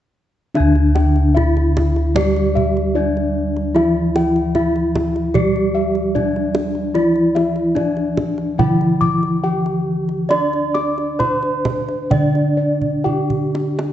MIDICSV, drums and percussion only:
0, 0, Header, 1, 2, 480
1, 0, Start_track
1, 0, Tempo, 800000
1, 331, Time_signature, 4, 2, 24, 8
1, 4171, Tempo, 818554
1, 5131, Tempo, 868307
1, 6571, Tempo, 936037
1, 7973, End_track
2, 0, Start_track
2, 0, Title_t, "Kendang"
2, 331, Note_on_c, 9, 63, 54
2, 391, Note_off_c, 9, 63, 0
2, 453, Note_on_c, 9, 62, 18
2, 513, Note_off_c, 9, 62, 0
2, 573, Note_on_c, 9, 63, 57
2, 633, Note_off_c, 9, 63, 0
2, 695, Note_on_c, 9, 62, 21
2, 755, Note_off_c, 9, 62, 0
2, 822, Note_on_c, 9, 63, 51
2, 822, Note_on_c, 9, 64, 42
2, 882, Note_off_c, 9, 63, 0
2, 882, Note_off_c, 9, 64, 0
2, 941, Note_on_c, 9, 62, 24
2, 1001, Note_off_c, 9, 62, 0
2, 1060, Note_on_c, 9, 63, 64
2, 1060, Note_on_c, 9, 64, 61
2, 1120, Note_off_c, 9, 63, 0
2, 1120, Note_off_c, 9, 64, 0
2, 1178, Note_on_c, 9, 62, 23
2, 1238, Note_off_c, 9, 62, 0
2, 1295, Note_on_c, 9, 64, 78
2, 1355, Note_off_c, 9, 64, 0
2, 1418, Note_on_c, 9, 62, 21
2, 1478, Note_off_c, 9, 62, 0
2, 1539, Note_on_c, 9, 64, 49
2, 1599, Note_off_c, 9, 64, 0
2, 1661, Note_on_c, 9, 62, 22
2, 1721, Note_off_c, 9, 62, 0
2, 1901, Note_on_c, 9, 62, 19
2, 1961, Note_off_c, 9, 62, 0
2, 2139, Note_on_c, 9, 62, 23
2, 2199, Note_off_c, 9, 62, 0
2, 2255, Note_on_c, 9, 63, 54
2, 2315, Note_off_c, 9, 63, 0
2, 2494, Note_on_c, 9, 63, 48
2, 2554, Note_off_c, 9, 63, 0
2, 2616, Note_on_c, 9, 62, 21
2, 2676, Note_off_c, 9, 62, 0
2, 2730, Note_on_c, 9, 63, 46
2, 2730, Note_on_c, 9, 64, 40
2, 2790, Note_off_c, 9, 63, 0
2, 2790, Note_off_c, 9, 64, 0
2, 2854, Note_on_c, 9, 62, 21
2, 2914, Note_off_c, 9, 62, 0
2, 2973, Note_on_c, 9, 63, 58
2, 2973, Note_on_c, 9, 64, 52
2, 3033, Note_off_c, 9, 63, 0
2, 3033, Note_off_c, 9, 64, 0
2, 3095, Note_on_c, 9, 62, 23
2, 3155, Note_off_c, 9, 62, 0
2, 3210, Note_on_c, 9, 64, 71
2, 3270, Note_off_c, 9, 64, 0
2, 3334, Note_on_c, 9, 62, 16
2, 3394, Note_off_c, 9, 62, 0
2, 3570, Note_on_c, 9, 62, 22
2, 3630, Note_off_c, 9, 62, 0
2, 3695, Note_on_c, 9, 64, 41
2, 3755, Note_off_c, 9, 64, 0
2, 3818, Note_on_c, 9, 62, 21
2, 3877, Note_off_c, 9, 62, 0
2, 3928, Note_on_c, 9, 63, 52
2, 3988, Note_off_c, 9, 63, 0
2, 4050, Note_on_c, 9, 62, 20
2, 4110, Note_off_c, 9, 62, 0
2, 4171, Note_on_c, 9, 63, 47
2, 4229, Note_off_c, 9, 63, 0
2, 4291, Note_on_c, 9, 62, 19
2, 4350, Note_off_c, 9, 62, 0
2, 4412, Note_on_c, 9, 63, 52
2, 4470, Note_off_c, 9, 63, 0
2, 4526, Note_on_c, 9, 62, 20
2, 4584, Note_off_c, 9, 62, 0
2, 4647, Note_on_c, 9, 63, 42
2, 4647, Note_on_c, 9, 64, 44
2, 4705, Note_off_c, 9, 63, 0
2, 4705, Note_off_c, 9, 64, 0
2, 4767, Note_on_c, 9, 62, 21
2, 4825, Note_off_c, 9, 62, 0
2, 4888, Note_on_c, 9, 63, 52
2, 4888, Note_on_c, 9, 64, 55
2, 4946, Note_off_c, 9, 63, 0
2, 4946, Note_off_c, 9, 64, 0
2, 5008, Note_on_c, 9, 62, 21
2, 5066, Note_off_c, 9, 62, 0
2, 5134, Note_on_c, 9, 64, 74
2, 5189, Note_off_c, 9, 64, 0
2, 5253, Note_on_c, 9, 62, 19
2, 5308, Note_off_c, 9, 62, 0
2, 5366, Note_on_c, 9, 64, 44
2, 5421, Note_off_c, 9, 64, 0
2, 5485, Note_on_c, 9, 62, 18
2, 5540, Note_off_c, 9, 62, 0
2, 5723, Note_on_c, 9, 62, 21
2, 5778, Note_off_c, 9, 62, 0
2, 5960, Note_on_c, 9, 62, 20
2, 6015, Note_off_c, 9, 62, 0
2, 6081, Note_on_c, 9, 63, 47
2, 6136, Note_off_c, 9, 63, 0
2, 6205, Note_on_c, 9, 62, 18
2, 6261, Note_off_c, 9, 62, 0
2, 6325, Note_on_c, 9, 63, 51
2, 6380, Note_off_c, 9, 63, 0
2, 6452, Note_on_c, 9, 62, 21
2, 6507, Note_off_c, 9, 62, 0
2, 6574, Note_on_c, 9, 63, 44
2, 6574, Note_on_c, 9, 64, 47
2, 6625, Note_off_c, 9, 63, 0
2, 6625, Note_off_c, 9, 64, 0
2, 6690, Note_on_c, 9, 62, 21
2, 6741, Note_off_c, 9, 62, 0
2, 6805, Note_on_c, 9, 63, 61
2, 6805, Note_on_c, 9, 64, 55
2, 6857, Note_off_c, 9, 63, 0
2, 6857, Note_off_c, 9, 64, 0
2, 6925, Note_on_c, 9, 62, 22
2, 6976, Note_off_c, 9, 62, 0
2, 7042, Note_on_c, 9, 64, 79
2, 7093, Note_off_c, 9, 64, 0
2, 7165, Note_on_c, 9, 62, 20
2, 7216, Note_off_c, 9, 62, 0
2, 7403, Note_on_c, 9, 64, 37
2, 7454, Note_off_c, 9, 64, 0
2, 7529, Note_on_c, 9, 64, 33
2, 7580, Note_off_c, 9, 64, 0
2, 7651, Note_on_c, 9, 64, 43
2, 7703, Note_off_c, 9, 64, 0
2, 7778, Note_on_c, 9, 63, 54
2, 7829, Note_off_c, 9, 63, 0
2, 7901, Note_on_c, 9, 63, 57
2, 7952, Note_off_c, 9, 63, 0
2, 7973, End_track
0, 0, End_of_file